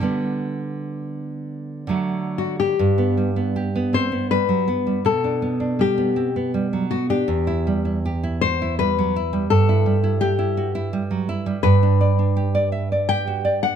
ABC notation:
X:1
M:3/4
L:1/16
Q:1/4=81
K:G
V:1 name="Nylon-string guitar"
z8 z2 F G- | G6 c2 B4 | A4 G4 z2 F G- | G6 c2 B4 |
A4 G4 z4 | B8 g3 f |]
V:2 name="Nylon-string guitar"
[D,G,B,]8 [D,F,A,]4 | G,, B, G, B, G B, C B, G, F, B, G, | B,, D B, D G, B, C B, G, F, B, D | E,, E G, E G E F E G, F, E G, |
G,, E G, E G E F E G, F, E G, | G,, D d D G d e d G F d D |]